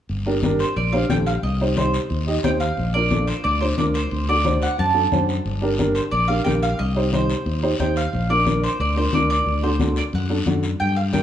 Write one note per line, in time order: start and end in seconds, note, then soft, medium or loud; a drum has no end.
0.09 0.63 G1 medium
0.09 high conga soft
0.09 long guiro medium
0.26 0.32 D4 medium
0.26 0.32 G4 medium
0.26 0.32 A#4 medium
0.43 0.61 D4 medium
0.43 0.61 G4 medium
0.43 0.61 A#4 medium
0.43 high conga medium
0.43 short guiro medium
0.59 0.76 C5 medium
0.59 short guiro medium
0.76 1.03 A#1 medium
0.76 0.94 D5 medium
0.76 high conga soft
0.76 long guiro medium
0.92 0.99 D4 medium
0.92 0.99 G4 medium
0.92 0.99 C5 medium
0.92 1.08 F5 medium
1.10 1.37 A#1 medium
1.10 1.27 D4 medium
1.10 1.28 G4 medium
1.10 1.28 A4 medium
1.10 1.15 G5 medium
1.10 high conga medium
1.10 short guiro medium
1.26 1.32 F5 medium
1.26 short guiro medium
1.43 1.97 C2 medium
1.43 1.75 D#5 medium
1.43 high conga soft
1.43 long guiro medium
1.61 1.66 D#4 medium
1.61 1.66 G4 medium
1.61 1.67 C5 medium
1.76 1.95 D#4 medium
1.76 1.95 G4 medium
1.76 2.24 C5 medium
1.76 1.95 C5 medium
1.76 high conga medium
1.76 short guiro medium
1.94 short guiro medium
2.10 2.37 D#2 medium
2.10 high conga soft
2.10 long guiro medium
2.27 2.33 D#4 medium
2.27 2.33 G4 medium
2.27 2.33 D#5 medium
2.43 2.71 D#2 medium
2.43 2.61 D#4 medium
2.43 2.61 G4 medium
2.43 2.62 C5 medium
2.43 2.49 G5 medium
2.43 high conga medium
2.43 short guiro medium
2.60 2.92 F5 medium
2.60 short guiro medium
2.77 3.31 A#1 medium
2.77 high conga soft
2.77 long guiro medium
2.94 3.00 D4 medium
2.94 3.00 F4 medium
2.94 3.01 A#4 medium
2.94 3.27 D5 medium
3.11 3.28 D4 medium
3.11 3.29 F4 medium
3.11 3.29 A4 medium
3.11 high conga medium
3.11 short guiro medium
3.27 3.43 C5 medium
3.27 short guiro medium
3.44 3.71 D2 loud
3.44 3.60 D5 medium
3.44 high conga soft
3.44 long guiro medium
3.61 3.67 D4 medium
3.61 3.67 F4 medium
3.61 3.66 C5 medium
3.61 3.68 C5 medium
3.78 4.05 D2 medium
3.78 3.95 D4 medium
3.78 3.96 F4 medium
3.78 3.96 A#4 medium
3.78 3.83 D5 medium
3.78 high conga medium
3.78 short guiro medium
3.94 4.29 C5 medium
3.94 short guiro medium
4.11 4.65 D2 medium
4.11 high conga soft
4.11 long guiro medium
4.29 4.34 D4 medium
4.29 4.34 F#4 medium
4.29 4.35 A4 medium
4.29 4.63 D5 medium
4.45 4.62 D4 medium
4.45 4.62 F#4 medium
4.45 4.63 C5 medium
4.45 high conga medium
4.45 short guiro medium
4.62 4.78 F#5 medium
4.62 short guiro medium
4.78 5.06 F#2 medium
4.78 5.26 A5 medium
4.78 high conga soft
4.78 long guiro medium
4.94 5.00 D4 medium
4.94 5.01 F#4 medium
4.94 5.01 A4 medium
5.12 5.39 F#2 medium
5.12 5.29 D4 medium
5.12 5.30 F#4 medium
5.12 5.30 C5 medium
5.12 high conga medium
5.12 short guiro medium
5.29 short guiro medium
5.45 5.99 G1 medium
5.45 high conga soft
5.45 long guiro medium
5.62 5.68 D4 medium
5.62 5.68 G4 medium
5.62 5.68 A#4 medium
5.79 5.96 D4 medium
5.79 5.96 G4 medium
5.79 5.97 A#4 medium
5.79 high conga medium
5.79 short guiro medium
5.95 6.00 C5 medium
5.95 short guiro medium
6.11 6.39 A#1 medium
6.11 6.27 D5 medium
6.11 high conga soft
6.11 long guiro medium
6.28 6.35 D4 medium
6.28 6.35 G4 medium
6.28 6.35 A#4 medium
6.28 6.44 F5 medium
6.44 6.73 A#1 medium
6.44 6.63 D4 medium
6.44 6.63 G4 medium
6.44 6.63 A#4 medium
6.44 6.49 G5 loud
6.44 high conga medium
6.44 short guiro medium
6.62 6.80 F5 medium
6.62 short guiro medium
6.79 7.33 C2 medium
6.79 7.10 D#5 medium
6.79 high conga soft
6.79 long guiro medium
6.95 7.01 D#4 medium
6.95 7.02 G4 medium
6.95 7.02 C5 medium
7.12 7.30 D#4 medium
7.12 7.30 G4 medium
7.12 7.30 C5 medium
7.12 7.60 C5 medium
7.12 high conga medium
7.12 short guiro medium
7.30 short guiro medium
7.46 7.73 D#2 loud
7.46 high conga soft
7.46 long guiro medium
7.63 7.69 D#4 medium
7.63 7.69 G4 medium
7.63 7.69 C5 medium
7.79 8.06 D#2 medium
7.79 7.97 D#4 medium
7.79 7.97 G4 medium
7.79 7.97 C5 medium
7.79 7.96 G5 medium
7.79 high conga medium
7.79 short guiro medium
7.96 8.31 F5 medium
7.96 short guiro medium
8.13 8.67 A#1 medium
8.13 high conga soft
8.13 long guiro medium
8.29 8.35 D4 medium
8.29 8.36 F4 medium
8.29 8.36 A#4 medium
8.29 8.61 D5 medium
8.46 8.64 D4 medium
8.46 8.64 F4 medium
8.46 8.64 A#4 medium
8.46 high conga medium
8.46 short guiro medium
8.63 8.79 C5 medium
8.63 short guiro medium
8.80 9.06 D2 medium
8.80 8.97 D5 medium
8.80 high conga soft
8.80 long guiro medium
8.96 9.02 D4 medium
8.96 9.02 F4 medium
8.96 9.03 A#4 medium
8.96 9.13 C5 medium
9.13 9.40 D2 medium
9.13 9.31 D4 medium
9.13 9.31 F4 medium
9.13 9.31 A#4 medium
9.13 9.29 D5 medium
9.13 high conga medium
9.13 short guiro medium
9.30 9.61 D5 medium
9.30 short guiro medium
9.46 10.00 D2 medium
9.46 high conga soft
9.46 long guiro medium
9.63 9.69 D4 medium
9.63 9.69 F#4 medium
9.63 9.69 A4 medium
9.63 9.94 C5 medium
9.79 9.97 D4 medium
9.79 9.97 F#4 medium
9.79 9.98 A4 medium
9.79 high conga medium
9.79 short guiro medium
9.96 10.03 D5 medium
9.96 short guiro medium
10.13 10.40 F#2 medium
10.13 10.61 F#5 medium
10.13 high conga soft
10.13 long guiro medium
10.30 10.36 D4 medium
10.30 10.36 F#4 medium
10.30 10.36 A4 medium
10.46 10.74 F#2 medium
10.46 10.64 D4 medium
10.46 10.64 F#4 medium
10.46 10.64 A4 medium
10.46 high conga medium
10.46 short guiro medium
10.63 short guiro medium
10.80 11.23 G2 medium
10.80 10.96 G5 medium
10.80 high conga soft
10.80 long guiro medium
10.96 11.01 F5 medium
11.12 11.23 D4 medium
11.12 11.23 G4 medium
11.12 11.23 A#4 medium
11.12 11.23 G5 medium
11.12 high conga medium
11.12 short guiro medium